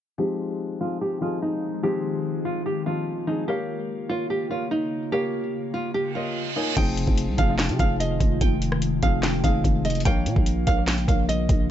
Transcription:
0.18 ambient pad D#3 G#3 F4, grand piano F3 G#3 C4 D#4, nylon-string guitar G4
0.80 grand piano F3 C4 D#4 G#4, nylon-string guitar F4
1.01 nylon-string guitar G4
1.21 grand piano F3 C4 D#4 G#4, nylon-string guitar F4
1.42 nylon-string guitar D#4
1.83 grand piano F3 G#3 C4 D#4, nylon-string guitar G4
2.45 nylon-string guitar F4
2.66 nylon-string guitar G4
2.86 grand piano F3 C4 D#4 F4, nylon-string guitar F4
3.27 grand piano F3 C4 D#4 G#4, nylon-string guitar D#4
3.48 ambient pad C#3 A#3, grand piano A#3 A#4 C#5 F5, nylon-string guitar G4
4.09 grand piano A#3 A#4 C#5 F5, nylon-string guitar F4
4.30 nylon-string guitar G4
4.50 grand piano A#3 A#4 C#5 F5, nylon-string guitar F4
4.71 nylon-string guitar D#4
5.12 grand piano A#3 A#4 C#5 F5, nylon-string guitar G4
5.74 nylon-string guitar F4
5.94 nylon-string guitar G4, reverse cymbal
6.15 grand piano A#3 A#4 C#5 D#5, nylon-string guitar F4
6.56 grand piano A#3 A#4 C#5 G#5, nylon-string guitar D#4
6.76 808-style bass F1, ambient pad D#3 G#3 F4, grand piano F3 C4 D#4 G#4, nylon-string guitar G5, kick, closed hi-hat, crash
6.97 closed hi-hat
7.07 808-style bass F1, kick
7.18 closed hi-hat
7.28 808-style bass C2
7.37 808-style bass F1, grand piano F3 C4 D#4 G#4, nylon-string guitar F5, kick, closed hi-hat
7.48 grand piano F3 C4 D#4 F4
7.59 nylon-string guitar G5, finger snap, snare, closed hi-hat
7.69 808-style bass C3, closed hi-hat
7.79 808-style bass F1, grand piano F3 C4 D#4 G#4, nylon-string guitar F5, kick, closed hi-hat
8.00 nylon-string guitar D#5, closed hi-hat
8.20 808-style bass F1, kick, closed hi-hat
8.41 808-style bass F1, nylon-string guitar G5, kick, closed hi-hat
8.62 closed hi-hat
8.72 cross-stick
8.82 closed hi-hat
9.02 808-style bass F1, grand piano F3 C4 D#4 G#4, nylon-string guitar F5, kick, closed hi-hat
9.23 nylon-string guitar G5, finger snap, snare, closed hi-hat
9.43 808-style bass F1, grand piano F3 C4 D#4 G#4, nylon-string guitar F5, kick, closed hi-hat
9.64 808-style bass F1, kick, closed hi-hat
9.85 nylon-string guitar D#5, closed hi-hat
9.90 closed hi-hat
9.95 closed hi-hat
10.00 closed hi-hat
10.05 808-style bass A#1, ambient pad C#3 A#3 F4, grand piano A#3 A#4 C#5 F5, nylon-string guitar G5, kick, closed hi-hat
10.26 808-style bass A#2, closed hi-hat
10.36 808-style bass A#1, kick
10.46 closed hi-hat
10.66 808-style bass A#1, grand piano A#3 A#4 C#5 F5, nylon-string guitar F5, kick, closed hi-hat
10.77 grand piano A#3 A#4 C#5 F5
10.88 nylon-string guitar G5, finger snap, snare, closed hi-hat
10.98 closed hi-hat
11.07 808-style bass A#1, grand piano A#3 A#4 C#5 F5, nylon-string guitar F5, kick, closed hi-hat
11.29 nylon-string guitar D#5, closed hi-hat
11.49 808-style bass A#1, kick, closed hi-hat

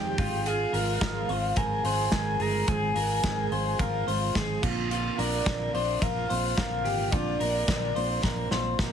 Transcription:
Already playing: fingered electric bass F2, steel-string acoustic guitar F2 C3 D#3 G#3 C4 F4, clean electric guitar G4, soft synth lead G5
0.18 fingered electric bass G#1, steel-string acoustic guitar G#2 D#3 F3 G#3 C4 F4, clean electric guitar F4, kick, open hi-hat
0.46 clean electric guitar G#4, soft synth lead F5, hi-hat pedal, ride
0.72 fingered electric bass G#1, steel-string acoustic guitar F3 G#3 C4 F4, clean electric guitar A#4, open hi-hat
1.00 fingered electric bass G#1, steel-string acoustic guitar G#2 D#3 F3 G#3 C4 F4, clean electric guitar A#4, kick, snare, hi-hat pedal, ride
1.27 fingered electric bass G#1, steel-string acoustic guitar G#3 C4 F4, clean electric guitar C5, open hi-hat
1.32 steel-string acoustic guitar F3
1.55 fingered electric bass G#1, steel-string acoustic guitar F3 G#3 C4 F4, clean electric guitar A#4, soft synth lead G#5, kick, hi-hat pedal, ride
1.82 fingered electric bass G#1, steel-string acoustic guitar F3 G#3 C4 F4, clean electric guitar C5, open hi-hat
2.11 fingered electric bass G#1, steel-string acoustic guitar G#2 D#3 F3 G#3 C4 F4, clean electric guitar A#4, soft synth lead G#5, kick, snare, hi-hat pedal, ride
2.39 fingered electric bass G1, clean electric guitar G#4, soft synth lead A#5, open hi-hat
2.66 fingered electric bass G#1, steel-string acoustic guitar G#2 D#3 F3 G#3 C4 F4, clean electric guitar G#4, soft synth lead G#5, kick, hi-hat pedal, ride
2.94 fingered electric bass G#1, steel-string acoustic guitar F3 G#3 C4 F4, clean electric guitar A#4, open hi-hat
3.23 fingered electric bass G#1, steel-string acoustic guitar G#2 D#3 F3 G#3 C4 F4, clean electric guitar A#4, kick, snare, hi-hat pedal, ride
3.51 fingered electric bass G#1, steel-string acoustic guitar F3 G#3 C4 F4, clean electric guitar C5, open hi-hat
3.78 fingered electric bass G#1, steel-string acoustic guitar F3 G#3 C4 F4, clean electric guitar A#4, soft synth lead F5, kick, hi-hat pedal, ride
4.06 fingered electric bass G#1, steel-string acoustic guitar F3 G#3 C4 F4, clean electric guitar C5, open hi-hat
4.34 fingered electric bass G#1, steel-string acoustic guitar G#2 D#3 F3 G#3 C4 F4, clean electric guitar G#4, kick, snare, hi-hat pedal, ride
4.61 fingered electric bass A#1, steel-string acoustic guitar A#2 D3 F3 A#3 C4 F4, clean electric guitar F4, kick, crash
4.91 clean electric guitar F4, hi-hat pedal, ride
5.17 fingered electric bass A#1, steel-string acoustic guitar F3 A#3 C4 F4, clean electric guitar A#4, soft synth lead D5, open hi-hat
5.44 fingered electric bass A#1, steel-string acoustic guitar A#2 D3 F3 A#3 C4 F4, clean electric guitar A#4, kick, snare, ride
5.72 fingered electric bass A#1, steel-string acoustic guitar F3 A#3 C4 F4, clean electric guitar C5, soft synth lead D5, open hi-hat
6.00 fingered electric bass A#1, steel-string acoustic guitar F3 A#3 C4 F4, clean electric guitar A#4, soft synth lead F5, kick, hi-hat pedal, ride
6.29 fingered electric bass A#1, steel-string acoustic guitar F3 A#3 C4 F4, clean electric guitar C5, open hi-hat
6.56 fingered electric bass A#1, steel-string acoustic guitar A#2 D3 F3 A#3 C4 F4, clean electric guitar A#4, soft synth lead F5, kick, snare, hi-hat pedal, ride
6.84 fingered electric bass G#1, clean electric guitar G4, open hi-hat
7.11 fingered electric bass A#1, steel-string acoustic guitar A#2 D3 F3 A#3 C4 F4, clean electric guitar F4, soft synth lead D5, kick, hi-hat pedal, ride
7.40 fingered electric bass A#1, steel-string acoustic guitar F3 A#3 C4 F4, clean electric guitar A#4, open hi-hat
7.66 fingered electric bass A#1, steel-string acoustic guitar A#2 D3 F3 A#3 C4 F4, clean electric guitar A#4, kick, snare, hi-hat pedal, ride
7.94 fingered electric bass A#1, steel-string acoustic guitar F3 A#3 C4 F4, clean electric guitar C5, open hi-hat
8.22 fingered electric bass A#1, steel-string acoustic guitar F3 A#3 C4 F4, clean electric guitar A#4, kick, snare
8.50 fingered electric bass A#1, steel-string acoustic guitar F3 A#3 C4 F4, clean electric guitar C5, snare
8.79 fingered electric bass A#1, steel-string acoustic guitar A#2 D3 F3 A#3 C4 F4, clean electric guitar A#4, kick, snare

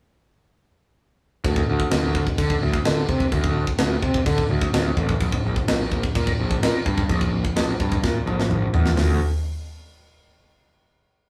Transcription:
1.44 picked electric bass D2, kick, crash
1.56 kick
1.68 picked electric bass D2
1.80 kick
1.91 picked electric bass D2, snare, crash
2.15 kick
2.27 kick
2.38 picked electric bass D3, kick, crash
2.50 kick
2.62 picked electric bass D2
2.74 kick
2.85 picked electric bass D3, snare, crash
3.09 picked electric bass C3, kick
3.20 kick
3.32 picked electric bass D2, kick, crash
3.44 kick
3.67 kick
3.78 picked electric bass D2, snare, crash
4.03 picked electric bass C3, kick
4.14 kick
4.26 picked electric bass D3, kick, crash
4.38 kick
4.50 picked electric bass D2
4.62 kick
4.73 picked electric bass D2, snare, crash
4.97 picked electric bass A1, kick
5.09 kick
5.20 picked electric bass A#1, kick, crash
5.32 kick
5.45 picked electric bass A#1
5.56 kick
5.68 picked electric bass A#1, snare, crash
5.92 kick
6.03 kick
6.15 picked electric bass A#2, kick, crash
6.27 kick
6.40 picked electric bass A#1
6.51 kick
6.63 picked electric bass A#2, snare, crash
6.86 picked electric bass G2, kick
6.98 kick
7.09 picked electric bass A#1, kick, crash
7.21 kick
7.45 kick
7.56 picked electric bass A#1, snare, crash
7.80 picked electric bass G2, kick
7.92 kick
8.03 picked electric bass A#2, kick, snare
8.26 picked electric bass A#1, mid tom
8.40 snare
8.49 picked electric bass A#1, mid tom
8.73 picked electric bass E2, floor tom
8.86 snare
8.96 picked electric bass D2, snare, floor tom, open hi-hat

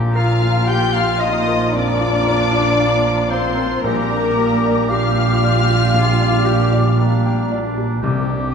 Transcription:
Already playing: grand piano A#1 F4, double bass section A#1, cello section A#2, french horn section F3 F4, oboe G4, flute section A#5
0.15 viola section F4, oboe F4, grand piano A#4, violin section F5 F6, clarinet F5
0.42 grand piano F4
0.67 viola section G4, grand piano F5, violin section G5 G6, clarinet G5, flute section C6
0.93 viola section F4, clarinet F5, violin section F5 F6, grand piano A#5
1.19 viola section D#4, clarinet D#5, violin section D#5 D#6, grand piano F5
1.48 grand piano A#4
1.72 grand piano F2, viola section D4, oboe F4, clarinet D5, violin section D5 D6, flute section A#5
2.00 grand piano F4
2.27 grand piano A#4
2.53 grand piano F4
2.80 grand piano F5
3.05 grand piano A#5
3.30 viola section C4, clarinet C5, violin section C5 C6, grand piano F5
3.57 grand piano A#4
3.82 double bass section A#1, grand piano A#1, cello section A#2, french horn section G3 D4, viola section A#3, oboe G4, clarinet A#4, violin section A#4 A#5, flute section D6
4.10 grand piano D4
4.37 oboe G4, grand piano G4
4.65 grand piano D5
4.89 viola section F4, grand piano G4, clarinet F5, violin section F5 F6
5.17 grand piano G5
5.44 grand piano D5
5.69 grand piano G4
5.94 grand piano A#1, oboe F4, flute section D6
6.20 grand piano D4
6.45 oboe G4, grand piano G4
6.73 grand piano D5
6.97 oboe D4, grand piano G4, flute section A#5
7.26 grand piano G5
7.52 grand piano D5
7.78 grand piano G4
8.02 double bass section C2, grand piano C2, cello section C3, timpani C3, french horn section G3 C4, oboe G4, flute section D6
8.29 grand piano D4

